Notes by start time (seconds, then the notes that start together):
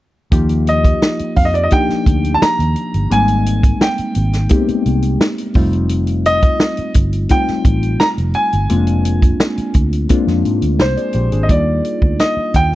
0.31 D#2 F3 A#3 D#4 F4 G4, kick, closed hi-hat
0.49 closed hi-hat
0.67 D#5, closed hi-hat
0.84 kick, closed hi-hat
1.02 snare
1.19 muted fingered electric bass stroke, closed hi-hat
1.36 F2 F5, kick, open hi-hat
1.45 D#5
1.54 D5, closed hi-hat
1.64 D#5
1.71 F3 A#3 D4 D#4 G4 G5, kick, closed hi-hat
1.89 muted fingered electric bass stroke, snare, closed hi-hat
2.06 D2, kick, closed hi-hat
2.24 closed hi-hat
2.34 A5
2.42 A#5, muted fingered electric bass stroke, snare
2.59 D#2, closed hi-hat
2.76 closed hi-hat
2.94 G1, closed hi-hat
3.10 G#1 G3 G#3 A#3 C4 D#4 G#5, closed hi-hat
3.28 closed hi-hat
3.46 closed hi-hat
3.63 kick, closed hi-hat
3.81 G5, snare
3.98 muted fingered electric bass stroke, closed hi-hat
4.15 G#1, closed hi-hat
4.33 snare, closed hi-hat
4.49 G#3 A#3 B3 D#4 G4, kick, closed hi-hat
4.56 C4
4.68 muted fingered electric bass stroke, closed hi-hat
4.86 C2, closed hi-hat
5.02 closed hi-hat
5.21 snare
5.38 closed hi-hat
5.54 F1 G3 A3 C4 D#4 F4, kick, open hi-hat
5.73 closed hi-hat
5.89 closed hi-hat
6.07 closed hi-hat
6.25 D#5, closed hi-hat
6.43 kick, closed hi-hat
6.60 snare
6.77 muted fingered electric bass stroke, closed hi-hat
6.94 G1, kick, closed hi-hat
7.13 closed hi-hat
7.29 G3 A3 C4 D#4 F4 G5, kick, closed hi-hat
7.48 muted fingered electric bass stroke, snare, closed hi-hat
7.65 A1, kick, closed hi-hat
7.83 closed hi-hat
8.00 A#5, snare
8.18 F1, closed hi-hat
8.34 G#5, closed hi-hat
8.53 G1, closed hi-hat
8.69 F1 G#3 A#3 C4 C#4 F4, closed hi-hat
8.77 D4
8.87 closed hi-hat
9.05 closed hi-hat
9.22 kick, closed hi-hat
9.40 snare
9.58 muted fingered electric bass stroke, closed hi-hat
9.74 D2, kick, closed hi-hat
9.93 closed hi-hat
10.09 G#3 A#3 C4 D4 F4, kick, closed hi-hat
10.27 F2, snare, closed hi-hat
10.45 G#2, closed hi-hat
10.62 D2, closed hi-hat
10.79 C2 C5, snare
10.97 G#4 D5, closed hi-hat
11.13 A#1 G4 C5, closed hi-hat
11.32 G#1 D4 G#4, closed hi-hat
11.43 D#5
11.49 D#2 G3 A#3 D#4 F4 D5, kick, closed hi-hat
11.85 closed hi-hat
12.02 D2, kick
12.19 D#5, snare, closed hi-hat
12.37 muted fingered electric bass stroke
12.54 D#2 G5, kick, closed hi-hat